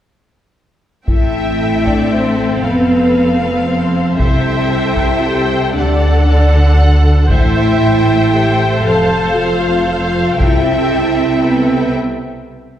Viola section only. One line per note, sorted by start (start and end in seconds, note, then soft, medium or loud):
1.08 4.15 C4 soft
1.08 4.15 A4 soft
4.19 5.74 A4 soft
4.19 5.71 C5 soft
5.75 7.28 A4 soft
7.29 10.36 A4 soft
7.29 10.36 C5 medium
10.40 11.92 C4 medium
10.40 11.93 A4 soft